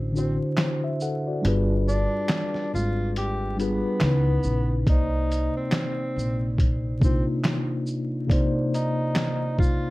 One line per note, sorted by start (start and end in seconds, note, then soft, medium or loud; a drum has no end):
0.00 0.37 A1 medium
0.12 1.14 D3 medium
0.12 1.15 D4 medium
0.12 0.58 E4 medium
0.12 shaker soft
0.17 0.39 C4 medium
0.17 0.59 F#4 medium
0.17 0.57 C5 medium
0.57 0.83 E4 soft
0.57 0.82 C5 medium
0.57 snare loud
0.57 clap medium
0.57 closed hi-hat medium
0.84 1.00 E5 medium
1.00 1.26 A4 medium
1.00 1.26 F#5 medium
1.00 shaker soft
1.27 1.68 F#4 soft
1.27 1.68 D5 medium
1.42 2.04 G1 loud
1.42 2.75 G3 medium
1.42 2.75 D4 medium
1.42 2.76 F4 medium
1.42 closed hi-hat medium
1.46 2.77 G#4 medium
1.46 2.78 B4 medium
1.88 2.69 D4 medium
1.88 shaker soft
2.29 snare loud
2.29 clap medium
2.29 closed hi-hat medium
2.54 snare soft
2.74 3.80 G#1 medium
2.74 3.12 F4 medium
2.74 shaker soft
3.16 3.55 G4 medium
3.16 closed hi-hat medium
3.57 4.00 G3 medium
3.57 4.83 B3 medium
3.57 4.01 D4 medium
3.57 4.02 F4 medium
3.57 closed hi-hat soft
3.57 shaker soft
3.61 4.03 G#4 medium
3.61 4.03 B4 medium
4.00 4.39 C#2 loud
4.00 4.72 C#3 medium
4.00 4.73 C#4 medium
4.00 4.74 D#4 medium
4.00 snare loud
4.00 clap medium
4.00 closed hi-hat medium
4.04 4.75 E4 medium
4.04 4.75 B4 medium
4.43 4.87 A#1 medium
4.43 shaker soft
4.85 5.47 C2 loud
4.85 6.18 C3 medium
4.85 6.19 A#3 medium
4.85 5.52 D#4 medium
4.85 6.20 D5 medium
4.85 kick loud
4.85 closed hi-hat medium
4.90 6.20 D#4 medium
4.90 6.21 C5 medium
5.32 closed hi-hat soft
5.32 shaker soft
5.57 6.55 C4 medium
5.72 snare loud
5.72 clap medium
5.72 closed hi-hat medium
6.16 7.23 A#1 medium
6.16 shaker soft
6.58 kick medium
6.58 closed hi-hat medium
7.00 8.01 C3 medium
7.00 8.02 A#3 medium
7.00 8.02 D4 medium
7.00 kick medium
7.00 shaker soft
7.04 7.26 C4 medium
7.04 8.03 D#4 medium
7.04 8.04 F4 medium
7.44 snare loud
7.44 clap medium
7.44 closed hi-hat medium
7.87 shaker medium
8.27 9.60 C3 medium
8.27 9.61 A#3 medium
8.27 9.61 D5 medium
8.27 kick loud
8.31 9.62 D#4 medium
8.31 9.63 C5 medium
8.31 closed hi-hat medium
8.74 9.55 D#4 medium
8.74 closed hi-hat soft
8.74 shaker soft
9.16 snare loud
9.16 clap medium
9.16 closed hi-hat medium
9.59 9.90 F4 medium
9.59 kick medium
9.59 shaker soft